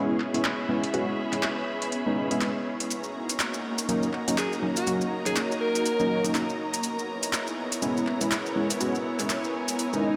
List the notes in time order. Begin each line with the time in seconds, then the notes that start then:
Already playing: G#3 B3 C#4 E4 F#4 G#4 C#5
0.20 clap
0.24 B5
0.31 G#3 B3 C#4 E4 E5, closed hi-hat
0.44 clap, closed hi-hat
0.69 G#3 B3 C#4 E4
0.84 closed hi-hat
0.94 G#3 B3 C#4 F#4, closed hi-hat
1.33 G#3 B3 C#4 E4, clap, closed hi-hat
1.43 clap, closed hi-hat
1.82 closed hi-hat
1.92 closed hi-hat
2.06 G#3 B3 C#4 D#4
2.31 G#3 B3 C#4 E4, closed hi-hat
2.41 clap, closed hi-hat
2.80 closed hi-hat
2.90 A#3 D#4 F#4 A#4 C#5 A#5, closed hi-hat, maracas
3.03 F#4, maracas
3.29 closed hi-hat, maracas
3.40 clap, closed hi-hat, maracas
3.54 maracas
3.78 closed hi-hat, maracas
3.89 F#3 A#3 C#4 D#4, closed hi-hat, maracas
3.93 D#5
4.03 maracas
4.13 clap
4.27 F#3 A#3 C#4 D#4 A#5, closed hi-hat, maracas
4.38 G#4, clap, closed hi-hat, maracas
4.53 maracas
4.62 F#3 A#3 C#4 D#4
4.76 F#4, closed hi-hat, maracas
4.87 F#3 A#3 C#4 F#4, closed hi-hat, maracas
5.01 maracas
5.26 F#3 A#3 C#4 D#4 G#4, clap, closed hi-hat, maracas
5.36 clap, closed hi-hat, maracas
5.52 maracas
5.61 A#4
5.75 closed hi-hat, maracas
5.86 closed hi-hat, maracas
6.00 F#3 A#3 C#4 D#4, maracas
6.24 F#3 A#3 C#4 D#4, closed hi-hat, maracas
6.35 clap, closed hi-hat, maracas
6.49 maracas
6.74 closed hi-hat, maracas
6.83 B3 E4 G#4, closed hi-hat, maracas
6.99 maracas
7.23 closed hi-hat, maracas
7.33 E4, clap, closed hi-hat, maracas
7.46 C#5, maracas
7.72 closed hi-hat, maracas
7.82 G#3 B3 C#4 E4, closed hi-hat, maracas
7.97 maracas
8.07 clap
8.21 G#3 B3 C#4 E4, closed hi-hat, maracas
8.31 clap, closed hi-hat, maracas
8.46 maracas
8.56 G#3 B3 C#4 E4
8.62 G#5
8.70 closed hi-hat, maracas
8.80 G#3 B3 C#4 F#4 A#4, closed hi-hat, maracas
8.95 maracas
9.19 G#3 B3 C#4 E4, clap, closed hi-hat, maracas
9.30 clap, closed hi-hat, maracas
9.44 maracas
9.68 closed hi-hat, maracas
9.79 closed hi-hat, swell, maracas
9.93 G#3 B3 C#4 D#4, maracas